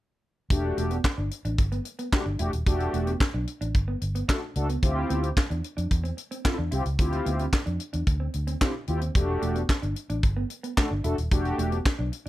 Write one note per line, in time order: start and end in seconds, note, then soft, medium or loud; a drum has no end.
0.50 0.70 E1 loud
0.50 0.96 A3 medium
0.50 0.97 D4 medium
0.50 0.97 F#4 medium
0.50 0.97 G4 medium
0.50 kick loud
0.50 closed hi-hat loud
0.64 muted clean electric guitar stroke soft
0.77 0.98 E1 medium
0.77 0.89 A3 medium
0.77 closed hi-hat medium
0.91 1.02 B3 medium
0.91 closed hi-hat soft
1.04 kick loud
1.04 snare loud
1.04 clap medium
1.18 1.28 G1 medium
1.18 1.29 D4 medium
1.31 muted clean electric guitar stroke soft
1.31 closed hi-hat medium
1.45 1.55 A1 medium
1.45 1.56 D4 medium
1.45 closed hi-hat soft
1.58 1.79 G1 medium
1.58 kick loud
1.58 closed hi-hat medium
1.72 1.83 B3 medium
1.72 closed hi-hat soft
1.85 muted clean electric guitar stroke soft
1.85 closed hi-hat medium
1.99 2.10 B3 medium
1.99 closed hi-hat medium
2.12 2.24 A3 medium
2.12 2.24 D4 medium
2.12 2.24 F#4 medium
2.12 2.24 G4 medium
2.12 muted clean electric guitar stroke soft
2.12 kick loud
2.12 snare loud
2.12 clap medium
2.26 2.36 G1 medium
2.26 2.37 D4 medium
2.39 2.50 E1 medium
2.39 2.51 A3 medium
2.39 2.51 D4 medium
2.39 2.50 E4 medium
2.39 2.51 F#4 medium
2.39 2.51 G4 medium
2.39 closed hi-hat medium
2.53 2.63 D#1 medium
2.53 closed hi-hat medium
2.66 2.87 E1 loud
2.66 3.13 A3 medium
2.66 3.13 D4 medium
2.66 3.13 F#4 medium
2.66 3.13 G4 medium
2.66 kick loud
2.66 closed hi-hat medium
2.80 muted clean electric guitar stroke soft
2.80 closed hi-hat soft
2.93 3.14 E1 medium
2.93 3.05 A3 medium
2.93 closed hi-hat medium
3.07 3.18 B3 medium
3.07 closed hi-hat soft
3.20 kick loud
3.20 snare loud
3.20 clap medium
3.34 3.44 B1 medium
3.34 3.45 D4 medium
3.48 muted clean electric guitar stroke soft
3.48 closed hi-hat medium
3.61 3.71 A1 medium
3.61 3.72 D4 medium
3.61 closed hi-hat medium
3.75 3.95 G1 medium
3.75 kick loud
3.75 closed hi-hat medium
3.88 3.99 B3 medium
4.02 4.22 G1 medium
4.02 muted clean electric guitar stroke soft
4.02 closed hi-hat medium
4.15 4.26 B3 medium
4.15 closed hi-hat medium
4.28 4.40 A3 medium
4.28 4.40 D4 medium
4.28 4.40 F#4 medium
4.28 4.41 A4 medium
4.28 kick loud
4.28 snare loud
4.28 clap medium
4.56 4.76 C#2 medium
4.56 4.67 A3 medium
4.56 4.67 D4 medium
4.56 4.67 F#4 medium
4.56 4.68 A4 medium
4.56 muted clean electric guitar stroke soft
4.56 closed hi-hat medium
4.69 4.80 B3 medium
4.69 closed hi-hat medium
4.82 5.03 D2 loud
4.82 5.29 C4 medium
4.82 5.29 E4 medium
4.82 5.29 F4 medium
4.82 5.29 G4 medium
4.82 kick loud
4.82 closed hi-hat medium
4.96 muted clean electric guitar stroke soft
5.09 5.30 D2 medium
5.09 5.21 B3 medium
5.09 closed hi-hat medium
5.23 5.34 C4 medium
5.23 closed hi-hat soft
5.37 kick loud
5.37 snare medium
5.37 clap medium
5.50 5.61 E2 medium
5.50 5.61 D4 medium
5.50 closed hi-hat soft
5.63 muted clean electric guitar stroke soft
5.63 closed hi-hat medium
5.77 5.88 F2 medium
5.77 5.88 D4 medium
5.77 closed hi-hat soft
5.91 6.11 E2 medium
5.91 kick loud
5.91 closed hi-hat medium
6.04 6.15 C4 medium
6.04 closed hi-hat soft
6.17 muted clean electric guitar stroke soft
6.17 closed hi-hat medium
6.31 6.42 C4 medium
6.31 closed hi-hat medium
6.45 6.56 C4 medium
6.45 6.56 E4 medium
6.45 6.57 F4 medium
6.45 6.57 A4 medium
6.45 kick loud
6.45 snare loud
6.45 clap medium
6.58 6.69 E2 medium
6.58 6.69 D4 medium
6.71 6.82 C2 medium
6.71 6.83 C4 medium
6.71 6.83 E4 medium
6.71 6.84 F4 medium
6.71 6.84 G4 loud
6.71 closed hi-hat medium
6.86 6.96 C#2 medium
6.86 closed hi-hat medium
6.99 7.19 D2 medium
6.99 7.45 C4 medium
6.99 7.45 E4 medium
6.99 7.45 F4 medium
6.99 7.46 G4 medium
6.99 kick loud
6.99 closed hi-hat loud
7.12 muted clean electric guitar stroke soft
7.12 closed hi-hat soft
7.25 7.46 D2 medium
7.25 7.37 B3 medium
7.25 closed hi-hat medium
7.39 7.51 C4 medium
7.39 closed hi-hat soft
7.53 kick loud
7.53 snare loud
7.53 clap medium
7.66 7.77 F2 medium
7.66 7.77 D4 medium
7.66 closed hi-hat soft
7.80 muted clean electric guitar stroke soft
7.80 closed hi-hat medium
7.93 8.04 E2 medium
7.93 8.04 D4 medium
7.93 closed hi-hat medium
8.07 8.27 D2 medium
8.07 kick loud
8.07 closed hi-hat medium
8.20 8.31 C4 medium
8.34 8.54 D2 medium
8.34 muted clean electric guitar stroke soft
8.34 closed hi-hat medium
8.47 8.59 C4 medium
8.47 closed hi-hat medium
8.61 8.73 C4 medium
8.61 8.72 D4 medium
8.61 8.73 E4 medium
8.61 8.73 F4 medium
8.61 8.73 G4 medium
8.61 kick loud
8.61 snare loud
8.61 clap medium
8.88 9.08 D#2 medium
8.88 8.99 C4 medium
8.88 9.00 E4 medium
8.88 9.00 F4 medium
8.88 9.00 G4 medium
8.88 muted clean electric guitar stroke soft
8.88 closed hi-hat medium
9.01 9.13 C4 medium
9.01 closed hi-hat medium
9.15 9.35 E1 loud
9.15 9.61 A3 medium
9.15 9.61 D4 medium
9.15 9.61 F#4 medium
9.15 9.62 G4 medium
9.15 kick loud
9.15 closed hi-hat medium
9.28 muted clean electric guitar stroke soft
9.42 9.62 E1 medium
9.42 9.53 A3 medium
9.42 closed hi-hat medium
9.55 9.67 B3 medium
9.55 closed hi-hat soft
9.69 kick loud
9.69 snare loud
9.69 clap medium
9.82 9.93 G1 medium
9.82 9.94 D4 medium
9.82 closed hi-hat soft
9.96 muted clean electric guitar stroke soft
9.96 closed hi-hat medium
10.10 10.20 A1 medium
10.10 10.21 D4 medium
10.10 closed hi-hat soft
10.23 10.43 G1 medium
10.23 kick loud
10.23 closed hi-hat medium
10.37 10.48 B3 medium
10.50 muted clean electric guitar stroke soft
10.50 closed hi-hat medium
10.63 10.75 B3 medium
10.63 closed hi-hat medium
10.77 10.89 A3 medium
10.77 10.89 D4 medium
10.77 10.89 F#4 medium
10.77 10.89 A4 medium
10.77 kick loud
10.77 snare loud
10.77 clap medium
10.91 11.01 G1 medium
10.91 11.02 D4 medium
11.04 11.14 E1 medium
11.04 11.16 A3 medium
11.04 11.16 D4 medium
11.04 11.15 E4 medium
11.04 11.16 F#4 medium
11.04 11.16 A4 medium
11.04 closed hi-hat medium
11.18 11.28 D#1 medium
11.18 closed hi-hat soft
11.31 11.52 E1 loud
11.31 11.78 A3 medium
11.31 11.78 D4 medium
11.31 11.78 F#4 medium
11.31 11.78 G4 medium
11.31 kick loud
11.31 closed hi-hat loud
11.45 muted clean electric guitar stroke soft
11.45 closed hi-hat soft
11.58 11.78 E1 medium
11.58 11.70 A3 medium
11.58 closed hi-hat medium
11.72 11.83 B3 medium
11.72 closed hi-hat soft
11.85 kick loud
11.85 snare loud
11.85 clap medium
11.98 12.09 B1 medium
11.98 12.10 D4 medium
12.12 muted clean electric guitar stroke soft
12.12 closed hi-hat medium
12.26 12.29 D4 medium